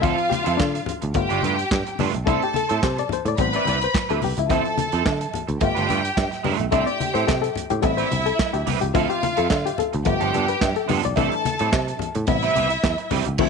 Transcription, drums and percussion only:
0.03 kick loud
0.03 closed hi-hat medium
0.18 closed hi-hat soft
0.31 closed hi-hat medium
0.31 high conga medium
0.46 closed hi-hat medium
0.60 kick loud
0.60 snare loud
0.60 clap medium
0.60 muted conga soft
0.75 closed hi-hat medium
0.86 closed hi-hat medium
0.86 low conga medium
1.02 closed hi-hat soft
1.02 high conga soft
1.14 kick loud
1.14 closed hi-hat medium
1.14 muted conga soft
1.30 closed hi-hat soft
1.42 closed hi-hat medium
1.42 high conga medium
1.59 closed hi-hat soft
1.71 kick loud
1.71 snare loud
1.71 clap medium
1.71 muted conga soft
1.86 closed hi-hat soft
1.99 open hi-hat medium
1.99 muted conga soft
1.99 high conga medium
2.13 closed hi-hat soft
2.13 low conga medium
2.27 kick loud
2.27 closed hi-hat medium
2.27 muted conga soft
2.42 closed hi-hat soft
2.54 closed hi-hat medium
2.54 high conga medium
2.69 closed hi-hat medium
2.83 kick loud
2.83 snare loud
2.83 clap medium
2.83 muted conga soft
2.98 closed hi-hat medium
3.09 closed hi-hat medium
3.09 muted conga soft
3.09 low conga medium
3.25 closed hi-hat soft
3.25 high conga medium
3.37 kick loud
3.37 closed hi-hat medium
3.37 muted conga soft
3.53 closed hi-hat soft
3.65 closed hi-hat medium
3.65 high conga medium
3.81 closed hi-hat soft
3.94 kick loud
3.94 snare loud
3.94 clap medium
3.94 muted conga soft
4.09 closed hi-hat soft
4.22 open hi-hat medium
4.22 high conga medium
4.37 closed hi-hat soft
4.37 low conga medium
4.50 kick loud
4.50 closed hi-hat medium
4.50 cowbell medium
4.50 muted conga soft
4.65 closed hi-hat soft
4.78 closed hi-hat medium
4.78 muted conga soft
4.78 high conga medium
4.92 closed hi-hat soft
5.06 kick loud
5.06 snare loud
5.06 clap medium
5.06 cowbell medium
5.06 muted conga soft
5.21 closed hi-hat medium
5.34 closed hi-hat medium
5.34 muted conga soft
5.34 low conga medium
5.48 closed hi-hat soft
5.48 high conga soft
5.60 kick loud
5.60 closed hi-hat medium
5.60 cowbell medium
5.60 muted conga soft
5.76 closed hi-hat soft
5.89 closed hi-hat medium
5.89 muted conga soft
5.89 high conga medium
6.05 closed hi-hat soft
6.17 kick loud
6.17 snare loud
6.17 clap medium
6.17 cowbell medium
6.32 snare soft
6.32 closed hi-hat soft
6.44 open hi-hat medium
6.44 muted conga soft
6.44 high conga medium
6.59 closed hi-hat soft
6.59 low conga medium
6.72 kick loud
6.72 closed hi-hat medium
6.72 cowbell medium
6.72 muted conga soft
6.87 closed hi-hat soft
7.00 closed hi-hat medium
7.00 muted conga soft
7.00 high conga medium
7.15 closed hi-hat soft
7.28 kick loud
7.28 snare loud
7.28 clap medium
7.28 cowbell medium
7.28 muted conga soft
7.44 closed hi-hat medium
7.55 closed hi-hat medium
7.55 muted conga soft
7.55 low conga medium
7.70 closed hi-hat soft
7.70 high conga medium
7.82 kick loud
7.82 closed hi-hat medium
7.82 cowbell medium
7.82 muted conga soft
7.98 closed hi-hat soft
8.11 closed hi-hat medium
8.11 muted conga soft
8.11 high conga medium
8.26 closed hi-hat soft
8.39 kick loud
8.39 snare loud
8.39 clap medium
8.39 cowbell medium
8.39 muted conga soft
8.54 closed hi-hat soft
8.67 open hi-hat medium
8.67 muted conga soft
8.67 high conga medium
8.81 closed hi-hat soft
8.81 low conga medium
8.95 kick loud
8.95 closed hi-hat medium
8.95 cowbell medium
8.95 muted conga soft
9.10 closed hi-hat soft
9.23 closed hi-hat medium
9.23 muted conga soft
9.23 high conga medium
9.37 closed hi-hat soft
9.50 kick loud
9.50 snare loud
9.50 clap medium
9.50 cowbell medium
9.66 closed hi-hat medium
9.78 closed hi-hat medium
9.78 muted conga soft
9.78 low conga medium
9.93 closed hi-hat soft
9.93 high conga medium
10.05 kick medium
10.05 closed hi-hat medium
10.05 cowbell medium
10.05 muted conga soft
10.20 closed hi-hat soft
10.34 closed hi-hat medium
10.34 high conga medium
10.48 closed hi-hat soft
10.61 kick loud
10.61 snare loud
10.61 clap medium
10.61 cowbell medium
10.61 muted conga soft
10.76 closed hi-hat soft
10.88 open hi-hat medium
10.88 high conga medium
11.03 closed hi-hat medium
11.03 low conga medium
11.16 kick loud
11.16 closed hi-hat medium
11.16 cowbell medium
11.32 closed hi-hat soft
11.45 closed hi-hat medium
11.45 muted conga soft
11.45 high conga medium
11.59 closed hi-hat soft
11.72 kick loud
11.72 snare loud
11.72 clap loud
11.72 cowbell medium
11.88 closed hi-hat medium
11.99 closed hi-hat medium
11.99 muted conga soft
11.99 low conga medium
12.15 closed hi-hat soft
12.15 high conga medium
12.27 kick loud
12.27 closed hi-hat medium
12.27 cowbell medium
12.42 closed hi-hat soft
12.55 closed hi-hat medium
12.55 high conga medium
12.70 closed hi-hat soft
12.83 kick loud
12.83 snare loud
12.83 clap medium
12.83 cowbell medium
12.83 muted conga soft
12.98 closed hi-hat soft
13.11 open hi-hat medium
13.11 high conga medium
13.11 low conga medium
13.25 closed hi-hat soft
13.25 low conga medium
13.38 kick loud
13.38 crash loud

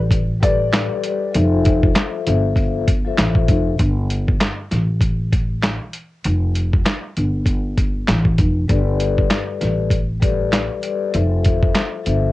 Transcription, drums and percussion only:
0.11 kick loud
0.11 closed hi-hat medium
0.43 kick loud
0.43 closed hi-hat medium
0.73 snare loud
0.73 clap loud
0.73 closed hi-hat medium
1.03 closed hi-hat medium
1.34 closed hi-hat medium
1.65 kick loud
1.65 closed hi-hat medium
1.83 kick loud
1.95 snare loud
1.95 clap medium
1.95 closed hi-hat medium
2.27 closed hi-hat medium
2.56 kick medium
2.56 closed hi-hat medium
2.88 kick loud
2.88 closed hi-hat medium
3.18 snare loud
3.18 clap medium
3.18 closed hi-hat medium
3.35 kick medium
3.48 kick medium
3.48 closed hi-hat medium
3.79 kick loud
3.79 closed hi-hat medium
4.10 closed hi-hat medium
4.28 kick loud
4.41 snare loud
4.41 clap medium
4.41 closed hi-hat medium
4.71 snare soft
4.71 closed hi-hat medium
5.01 kick medium
5.01 closed hi-hat medium
5.33 kick medium
5.33 closed hi-hat medium
5.63 snare loud
5.63 clap medium
5.63 closed hi-hat medium
5.93 closed hi-hat medium
6.24 closed hi-hat medium
6.55 closed hi-hat medium
6.73 kick medium
6.86 snare loud
6.86 clap medium
6.86 closed hi-hat medium
7.16 closed hi-hat medium
7.46 kick medium
7.46 closed hi-hat medium
7.77 kick medium
7.77 closed hi-hat medium
8.08 snare loud
8.08 clap medium
8.08 closed hi-hat medium
8.25 kick medium
8.38 kick loud
8.38 closed hi-hat medium
8.69 kick loud
8.69 closed hi-hat medium
9.00 closed hi-hat medium
9.18 kick loud
9.30 snare loud
9.30 clap medium
9.30 closed hi-hat medium
9.61 snare soft
9.61 closed hi-hat medium
9.90 kick medium
9.90 closed hi-hat medium
10.22 kick medium
10.22 closed hi-hat medium
10.53 snare loud
10.53 clap medium
10.53 closed hi-hat medium
10.83 closed hi-hat medium
11.14 closed hi-hat medium
11.45 kick loud
11.45 closed hi-hat medium
11.63 kick loud
11.75 snare loud
11.75 clap medium
11.75 closed hi-hat medium
12.06 closed hi-hat medium

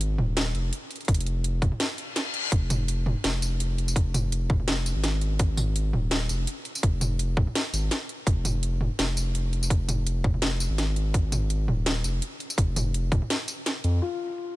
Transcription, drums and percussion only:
0.01 closed hi-hat medium
0.18 mid tom medium
0.37 snare loud
0.37 closed hi-hat medium
0.55 closed hi-hat soft
0.73 closed hi-hat medium
0.91 closed hi-hat soft
0.96 closed hi-hat soft
1.01 closed hi-hat soft
1.05 kick loud
1.05 closed hi-hat soft
1.09 closed hi-hat medium
1.14 closed hi-hat medium
1.20 closed hi-hat medium
1.26 closed hi-hat soft
1.44 closed hi-hat medium
1.62 kick loud
1.62 closed hi-hat soft
1.62 mid tom medium
1.72 mid tom soft
1.80 snare loud
1.80 closed hi-hat medium
1.98 closed hi-hat soft
2.16 snare medium
2.16 closed hi-hat medium
2.34 closed hi-hat soft
2.52 kick loud
2.52 closed hi-hat medium
2.70 closed hi-hat soft
2.70 mid tom medium
2.70 tambourine medium
2.88 closed hi-hat medium
3.06 mid tom medium
3.24 snare loud
3.24 closed hi-hat medium
3.42 closed hi-hat soft
3.42 tambourine medium
3.60 closed hi-hat medium
3.78 closed hi-hat soft
3.88 tambourine medium
3.96 kick loud
3.96 closed hi-hat medium
4.14 closed hi-hat soft
4.14 mid tom medium
4.14 tambourine medium
4.32 closed hi-hat medium
4.50 kick loud
4.50 mid tom medium
4.60 mid tom soft
4.68 snare loud
4.68 closed hi-hat medium
4.86 closed hi-hat soft
4.86 tambourine medium
5.04 snare medium
5.04 closed hi-hat medium
5.21 closed hi-hat soft
5.39 kick loud
5.39 closed hi-hat medium
5.57 mid tom medium
5.57 tambourine medium
5.76 closed hi-hat medium
5.93 mid tom medium
6.11 snare loud
6.11 closed hi-hat medium
6.29 closed hi-hat soft
6.29 tambourine medium
6.47 closed hi-hat medium
6.65 closed hi-hat soft
6.75 tambourine medium
6.83 kick loud
6.83 closed hi-hat medium
7.01 closed hi-hat soft
7.01 mid tom medium
7.01 tambourine medium
7.19 closed hi-hat medium
7.37 kick loud
7.37 mid tom medium
7.47 mid tom soft
7.55 snare loud
7.55 closed hi-hat medium
7.74 closed hi-hat soft
7.74 tambourine medium
7.91 snare medium
7.91 closed hi-hat medium
8.09 closed hi-hat soft
8.27 kick loud
8.27 closed hi-hat medium
8.45 closed hi-hat soft
8.45 mid tom medium
8.45 tambourine medium
8.63 closed hi-hat medium
8.81 mid tom medium
8.99 snare loud
8.99 closed hi-hat medium
9.17 closed hi-hat soft
9.17 tambourine medium
9.35 closed hi-hat medium
9.53 closed hi-hat soft
9.63 tambourine medium
9.70 kick loud
9.70 closed hi-hat medium
9.89 closed hi-hat soft
9.89 mid tom medium
9.89 tambourine medium
10.07 closed hi-hat medium
10.24 kick loud
10.24 mid tom medium
10.34 mid tom soft
10.42 snare loud
10.42 closed hi-hat medium
10.60 closed hi-hat soft
10.60 tambourine medium
10.78 snare medium
10.78 closed hi-hat medium
10.96 closed hi-hat soft
11.14 kick loud
11.14 closed hi-hat medium
11.32 closed hi-hat soft
11.32 mid tom medium
11.32 tambourine medium
11.50 closed hi-hat medium
11.68 mid tom medium
11.86 snare loud
11.86 closed hi-hat medium
12.04 closed hi-hat soft
12.04 tambourine medium
12.22 closed hi-hat medium
12.40 closed hi-hat soft
12.50 tambourine medium
12.58 kick loud
12.58 closed hi-hat medium
12.76 closed hi-hat soft
12.76 mid tom medium
12.76 tambourine medium
12.94 closed hi-hat medium
13.12 kick loud
13.12 closed hi-hat soft
13.12 mid tom medium
13.22 mid tom soft
13.30 snare loud
13.30 closed hi-hat medium
13.48 closed hi-hat soft
13.48 tambourine medium
13.66 snare medium
13.66 closed hi-hat medium
13.84 closed hi-hat soft
14.02 closed hi-hat medium
14.20 closed hi-hat soft
14.38 closed hi-hat medium

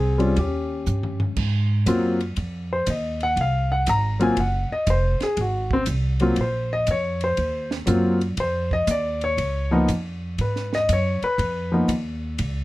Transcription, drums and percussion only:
0.20 ride soft
0.36 ride soft
0.86 hi-hat pedal soft
1.03 floor tom soft
1.20 floor tom medium
1.36 kick medium
1.36 crash medium
1.86 hi-hat pedal medium
1.86 ride medium
2.20 ride soft
2.36 ride soft
2.87 hi-hat pedal soft
2.87 ride medium
3.20 ride soft
3.37 ride soft
3.86 hi-hat pedal medium
3.86 ride medium
4.20 ride soft
4.37 ride medium
4.87 hi-hat pedal soft
4.87 ride medium
5.20 snare soft
5.20 ride soft
5.37 ride medium
5.71 kick medium
5.86 hi-hat pedal soft
5.86 ride medium
6.20 ride soft
6.36 ride medium
6.87 hi-hat pedal medium
6.87 ride medium
7.21 ride soft
7.37 ride soft
7.71 snare soft
7.87 hi-hat pedal medium
7.87 ride medium
8.21 ride soft
8.37 ride medium
8.71 kick soft
8.87 hi-hat pedal medium
8.87 ride medium
9.21 ride soft
9.38 ride medium
9.88 hi-hat pedal medium
9.88 ride medium
10.38 ride medium
10.56 snare soft
10.73 snare soft
10.89 hi-hat pedal soft
10.89 ride medium
11.22 ride soft
11.39 ride medium
11.89 hi-hat pedal soft
11.89 ride medium
12.38 ride medium

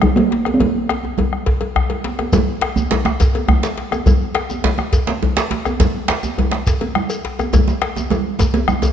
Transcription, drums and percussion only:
0.02 bombo rim medium
0.02 low conga medium
0.02 djembe bass medium
0.17 cowbell soft
0.31 bombo rim soft
0.31 djembe slap medium
0.45 bombo rim medium
0.45 cowbell soft
0.45 high conga medium
0.45 djembe tone medium
0.60 bombo low medium
0.60 cowbell medium
0.60 high conga soft
0.60 djembe bass medium
0.60 low conga medium
0.89 bombo rim medium
0.89 cowbell soft
0.89 djembe slap medium
0.89 high conga soft
1.03 djembe slap soft
1.03 high conga soft
1.03 djembe tone soft
1.18 cowbell soft
1.18 djembe slap soft
1.18 low conga medium
1.18 djembe bass medium
1.33 bombo rim medium
1.46 bombo rim soft
1.46 bombo low medium
1.46 cowbell soft
1.46 djembe slap medium
1.61 cowbell soft
1.61 djembe slap soft
1.61 djembe tone medium
1.61 low conga soft
1.75 bombo rim medium
1.75 low conga soft
1.75 djembe bass medium
1.90 cowbell soft
1.90 low conga soft
2.04 djembe slap medium
2.04 high conga medium
2.19 bombo rim medium
2.19 cowbell soft
2.19 djembe slap soft
2.19 djembe tone medium
2.19 high conga medium
2.32 bombo low loud
2.32 cowbell medium
2.32 djembe tone medium
2.32 djembe bass medium
2.32 low conga medium
2.32 shekere medium
2.48 high conga soft
2.61 bombo rim loud
2.61 cowbell soft
2.61 djembe slap medium
2.61 high conga soft
2.76 djembe slap soft
2.76 djembe tone medium
2.76 high conga medium
2.76 djembe bass medium
2.76 shekere soft
2.91 cowbell medium
2.91 djembe slap medium
2.91 low conga medium
2.91 djembe bass medium
3.05 bombo rim medium
3.05 djembe tone loud
3.20 bombo low loud
3.20 cowbell soft
3.20 djembe slap medium
3.20 shekere medium
3.34 cowbell soft
3.34 djembe tone medium
3.34 high conga medium
3.48 bombo rim loud
3.48 djembe bass medium
3.48 low conga medium
3.63 cowbell soft
3.63 djembe slap medium
3.63 shekere soft
3.78 bombo rim soft
3.78 djembe slap medium
3.91 bombo rim medium
3.91 cowbell soft
3.91 djembe tone medium
3.91 high conga medium
3.91 shekere soft
4.06 bombo low loud
4.06 cowbell medium
4.06 djembe bass medium
4.06 low conga medium
4.06 shekere medium
4.22 high conga soft
4.35 bombo rim medium
4.35 cowbell soft
4.35 djembe slap medium
4.35 high conga soft
4.50 djembe slap soft
4.50 djembe tone medium
4.50 high conga medium
4.50 shekere soft
4.64 cowbell medium
4.64 djembe slap loud
4.64 high conga soft
4.64 djembe bass medium
4.64 low conga medium
4.78 bombo rim medium
4.78 djembe tone medium
4.93 bombo low medium
4.93 cowbell soft
4.93 djembe slap medium
4.93 shekere medium
5.07 cowbell soft
5.07 djembe slap medium
5.07 djembe tone medium
5.07 high conga medium
5.23 low conga medium
5.23 djembe bass medium
5.37 cowbell medium
5.37 djembe slap loud
5.37 shekere soft
5.51 bombo rim soft
5.51 djembe slap medium
5.51 djembe tone medium
5.65 bombo rim medium
5.65 cowbell soft
5.65 djembe tone medium
5.65 high conga medium
5.65 shekere soft
5.80 bombo low medium
5.80 cowbell medium
5.80 djembe slap medium
5.80 djembe bass medium
5.80 low conga medium
5.80 shekere medium
5.95 high conga soft
6.08 bombo rim medium
6.08 cowbell soft
6.08 djembe slap loud
6.08 djembe slap medium
6.08 high conga soft
6.23 djembe slap soft
6.23 djembe tone medium
6.23 high conga medium
6.23 shekere soft
6.38 cowbell soft
6.38 high conga soft
6.38 djembe bass medium
6.38 low conga medium
6.51 bombo rim medium
6.51 djembe slap medium
6.67 bombo low medium
6.67 cowbell soft
6.67 djembe slap medium
6.67 shekere medium
6.81 cowbell soft
6.81 djembe tone medium
6.81 high conga medium
6.95 bombo rim medium
6.95 low conga medium
7.10 cowbell soft
7.10 shekere soft
7.25 bombo rim soft
7.25 djembe slap medium
7.39 bombo rim medium
7.39 cowbell soft
7.39 djembe tone medium
7.39 high conga medium
7.39 shekere soft
7.53 bombo rim soft
7.53 bombo low medium
7.53 cowbell medium
7.53 djembe tone medium
7.53 high conga soft
7.53 djembe bass medium
7.53 low conga medium
7.53 shekere medium
7.68 djembe tone medium
7.68 high conga soft
7.68 shekere soft
7.82 bombo rim medium
7.82 cowbell soft
7.82 djembe slap medium
7.96 djembe tone medium
7.96 high conga medium
7.96 djembe tone medium
7.96 shekere soft
8.10 bombo rim soft
8.10 cowbell medium
8.10 djembe tone medium
8.10 high conga soft
8.10 low conga medium
8.10 shekere soft
8.25 djembe slap soft
8.25 high conga soft
8.39 bombo rim soft
8.39 bombo low medium
8.39 cowbell soft
8.39 djembe slap medium
8.39 djembe tone medium
8.39 shekere medium
8.54 cowbell soft
8.54 djembe tone medium
8.54 high conga medium
8.54 djembe bass soft
8.68 bombo rim loud
8.68 low conga medium
8.68 djembe bass soft
8.68 shekere soft
8.82 cowbell soft
8.82 djembe tone medium
8.82 high conga soft
8.82 djembe bass medium
8.82 shekere soft

